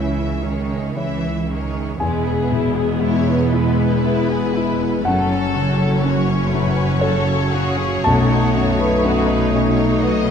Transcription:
Already playing: double bass section C#2, grand piano C#2 G#3 C#5 E5, cello section C#3, viola section E3 E4, alto flute C#4, violin section E5
0.42 cello section D#3, viola section G#3 C#4, violin section C#5
0.95 viola section E3 E4, cello section E3, grand piano G#3 C#5 E5, violin section E5
1.49 cello section D#3, viola section G#3 C#4, violin section C#5
2.00 double bass section E1, grand piano E2 G#5, cello section E2, french horn section G#3, violin section G#3 G#4, viola section B3 E4
2.28 violin section B3
2.52 grand piano B2, violin section E4
2.76 violin section G#4
3.02 grand piano G#3, violin section E4 C#5
3.28 violin section B3
3.53 violin section G#3 B4, grand piano E4
3.80 violin section B3
4.04 violin section E4, grand piano B4
4.30 violin section G#4
4.55 violin section E4, grand piano E4
4.81 violin section B3
5.05 double bass section F#1, cello section F#2, grand piano F#2 F#5, french horn section F#3, viola section F#3 C#4, violin section A3 A4 C#5
5.31 violin section C#4
5.55 grand piano C#3, violin section F#4
5.79 violin section A4
6.03 grand piano C#4, violin section F#4 C#5
6.27 violin section C#4
6.49 violin section A3
6.53 grand piano C#3, violin section B4
6.74 violin section C#4
6.99 french horn section C#3, violin section F#4 A4, grand piano A4 C#5
7.25 violin section A4
7.52 grand piano C#4, violin section F#4 G#4
7.78 violin section C#4
8.03 double bass section B1, grand piano B1 A5, cello section B2, french horn section A3, violin section C#4 F#4, viola section D#4
8.29 violin section D#4
8.55 grand piano F#2, violin section F#4 C#5
8.80 violin section B4
9.04 grand piano C#4, violin section F#4 B4
9.29 violin section D#4
9.52 violin section C#4 C#5, grand piano D#4
9.77 violin section D#4
10.01 violin section F#4 D#5, grand piano B4
10.26 violin section B4

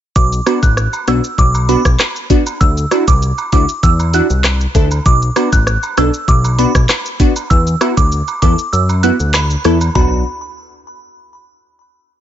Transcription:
0.16 analog synth bass B1, synth bell D6, kick, shaker
0.32 shaker
0.46 synth stab B3 D4 F#4, cross-stick, closed hi-hat, cabasa, high woodblock, shaker
0.63 analog synth bass A1, synth bell F#6, kick, shaker
0.77 cross-stick, shaker
0.93 high woodblock, shaker
1.08 analog synth bass B1, synth stab B3 D4 F#4, synth bell E6, cross-stick, closed hi-hat, cabasa, shaker
1.24 shaker
1.38 analog synth bass B1, synth bell D6, kick, shaker
1.55 high woodblock, shaker
1.69 synth stab B3 D4 F#4, synth bell B5, closed hi-hat, cabasa, shaker
1.85 analog synth bass B1, kick, cross-stick, shaker
2.00 cross-stick, clap, high woodblock, shaker
2.16 shaker
2.30 synth stab B3 D4 F#4, kick, closed hi-hat, cabasa, shaker
2.46 high woodblock, shaker
2.61 analog synth bass D2, synth bell E6, kick, shaker
2.77 shaker
2.91 synth stab D4 E4 F#4, cross-stick, closed hi-hat, cabasa, high woodblock, shaker
3.08 analog synth bass C2, synth bell D6, kick, shaker
3.22 shaker
3.38 high woodblock, shaker
3.52 analog synth bass D2, synth stab D4 E4 F#4, synth bell D6, kick, closed hi-hat, cabasa, shaker
3.69 shaker
3.83 analog synth bass E2, synth bell E6, kick, shaker
4.00 high woodblock, shaker
4.14 synth stab D4 E4 F#4, synth bell F#6, closed hi-hat, cabasa, shaker
4.30 analog synth bass C2, shaker
4.44 cross-stick, clap, high woodblock, shaker
4.61 shaker
4.75 analog synth bass D2, synth stab D4 E4 A4, kick, closed hi-hat, cabasa, shaker
4.91 high woodblock, shaker
5.06 analog synth bass B1, synth bell D6, kick, shaker
5.22 shaker
5.36 synth stab B3 D4 F#4, cross-stick, closed hi-hat, cabasa, high woodblock, shaker
5.52 analog synth bass A1, synth bell F#6, kick, shaker
5.67 cross-stick, shaker
5.83 high woodblock, shaker
5.97 analog synth bass B1, synth stab B3 D4 A4, synth bell E6, cross-stick, closed hi-hat, cabasa, shaker
6.14 shaker
6.28 analog synth bass B1, synth bell D6, kick, shaker
6.44 high woodblock, shaker
6.59 synth stab B3 D4 F#4, synth bell B5, closed hi-hat, cabasa, shaker
6.75 analog synth bass B1, kick, cross-stick, shaker
6.89 cross-stick, clap, high woodblock, shaker
7.06 shaker
7.20 synth stab B3 D4 F#4, kick, closed hi-hat, cabasa, shaker
7.36 high woodblock, shaker
7.50 analog synth bass E2, synth bell E6, kick, shaker
7.67 shaker
7.81 synth stab B3 E4 F#4, cross-stick, closed hi-hat, cabasa, high woodblock, shaker
7.97 analog synth bass D2, synth bell D6, kick, shaker
8.12 shaker
8.28 high woodblock, shaker
8.42 analog synth bass E2, synth stab B3 E4 A4, synth bell D6, kick, closed hi-hat, cabasa, shaker
8.59 shaker
8.73 analog synth bass F#2, synth bell E6, shaker
8.89 high woodblock, shaker
9.03 synth stab B3 E4 F#4, synth bell F#6, closed hi-hat, cabasa, shaker
9.20 analog synth bass D2, shaker
9.34 synth bell B5, cross-stick, clap, high woodblock, shaker
9.50 shaker
9.64 analog synth bass E2, synth stab B3 E4 A4, cross-stick, closed hi-hat, cabasa, shaker
9.81 high woodblock, shaker
9.95 analog synth bass B1, synth stab B3 D4 F#4, synth bell B5, kick, floor tom, high woodblock

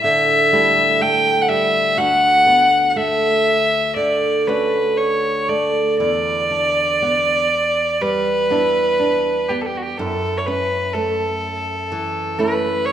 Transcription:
Already playing: nylon-string guitar A2 G3 A3 E4
0.04 nylon-string guitar D3, fiddle E5
0.52 nylon-string guitar G3 A3 E4
1.01 nylon-string guitar A3, fiddle G5
1.42 fiddle F#5
1.49 nylon-string guitar G3, fiddle E5
1.97 nylon-string guitar D2 F#4, fiddle F#5
2.46 nylon-string guitar B3
2.90 fiddle F#5
2.96 nylon-string guitar A3, fiddle E5
3.96 nylon-string guitar D3, fiddle D5
4.47 nylon-string guitar A3 C#4 F#4, fiddle B4
4.97 fiddle C#5
5.49 nylon-string guitar A3, fiddle D5
5.99 nylon-string guitar E2 E4, fiddle D5
6.50 nylon-string guitar D4
7.02 nylon-string guitar B3
8.01 nylon-string guitar G3, fiddle B4
8.50 nylon-string guitar B3 D4 E4
8.99 nylon-string guitar D4
9.49 nylon-string guitar B3, fiddle G4
9.62 fiddle A4
9.66 fiddle G4
9.77 fiddle F#4
9.82 fiddle G4
9.97 nylon-string guitar F#2 E4, fiddle A4
10.38 fiddle C#5
10.47 nylon-string guitar C#4, fiddle B4
10.94 nylon-string guitar A3, fiddle A4
11.92 nylon-string guitar E3
12.38 nylon-string guitar A3 C#4 E4, fiddle B4
12.86 fiddle C#5

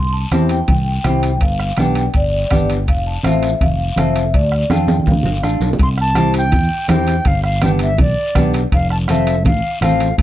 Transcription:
Already playing: fingered electric bass C2, vibraphone C6
0.13 vibraphone A5
0.31 fingered electric bass E2, clean electric guitar C4 E4 G4, vibraphone A5, bombo rim, high conga, high timbale, short guiro
0.49 vibraphone G5, high timbale, short guiro
0.68 fingered electric bass C2, bombo low, high conga, high timbale, long guiro
1.04 fingered electric bass C2, clean electric guitar C4 E4 G4, vibraphone G5, bombo rim, high conga, high timbale, short guiro
1.23 high timbale, short guiro
1.41 fingered electric bass G1, vibraphone F5, bombo low, high timbale, long guiro
1.60 bombo rim
1.77 fingered electric bass B1, clean electric guitar B3 D4 G4, vibraphone G5, bombo rim, high conga, high timbale, short guiro
1.95 high timbale, short guiro
2.14 fingered electric bass G1, vibraphone D5, bombo low, high timbale, long guiro
2.50 fingered electric bass G1, clean electric guitar B3 D4 G4, bombo low, bombo rim, high conga, high timbale, short guiro
2.70 high timbale, short guiro
2.87 fingered electric bass F1, vibraphone F5, bombo low, high timbale, long guiro
3.07 vibraphone A5
3.23 fingered electric bass A1, clean electric guitar C4 F4 A4, vibraphone E5, bombo rim, high conga, high timbale, short guiro
3.43 high timbale, short guiro
3.61 fingered electric bass F1, vibraphone F5, bombo low, high conga, high timbale, long guiro
3.96 fingered electric bass F1, clean electric guitar C4 F4 A4, vibraphone E5, bombo rim, high conga, high timbale, short guiro
4.16 high timbale, short guiro
4.34 fingered electric bass D2, vibraphone D5, bombo low, high timbale, long guiro
4.52 bombo rim
4.70 fingered electric bass F2, clean electric guitar D4 F4 A4, vibraphone G5, bombo rim, high conga, high timbale, short guiro
4.87 high conga, high timbale, short guiro
5.00 high conga
5.06 fingered electric bass D2, vibraphone F5, bombo low, low timbale, long guiro
5.12 high conga
5.23 fingered electric bass G1, low conga, low timbale
5.42 fingered electric bass A1, clean electric guitar D4 F4 A4, bombo rim, short guiro
5.60 fingered electric bass B1, low timbale, short guiro
5.73 low conga
5.79 fingered electric bass C2, bombo low, high timbale, long guiro
5.83 flute C6
5.98 flute A5, bombo rim
6.15 clean electric guitar C4 E4 G4, bombo rim, high conga, high timbale, short guiro
6.34 high timbale, short guiro
6.38 flute G5
6.52 fingered electric bass E2, bombo low, high conga, low conga, high timbale, long guiro
6.88 fingered electric bass E2, clean electric guitar C4 E4 G4, flute G5, bombo rim, high conga, high timbale, low timbale, short guiro
7.07 high timbale, short guiro
7.25 fingered electric bass G1, flute F5, bombo low, low conga, high timbale, long guiro
7.44 flute F5, bombo rim
7.61 clean electric guitar B3 D4 G4, flute G5, bombo rim, high conga, high timbale, short guiro
7.79 flute E5, high timbale, short guiro
7.98 fingered electric bass B1, flute D5, bombo low, high conga, low conga, high timbale, long guiro
8.35 fingered electric bass B1, clean electric guitar B3 D4 G4, bombo low, bombo rim, high conga, low conga, high timbale, short guiro
8.54 high timbale, short guiro
8.72 fingered electric bass F1, flute F5, bombo low, high timbale, long guiro
8.90 flute A5, bombo rim
9.08 clean electric guitar C4 F4 A4, flute E5, bombo rim, high conga, high timbale, short guiro
9.27 high timbale, short guiro
9.45 fingered electric bass A1, flute F5, bombo low, high conga, low conga, high timbale, long guiro
9.81 fingered electric bass A1, clean electric guitar C4 F4 A4, flute F5, bombo rim, high conga, high timbale, short guiro
10.00 high timbale, short guiro
10.18 fingered electric bass D2, bombo low, high timbale, long guiro

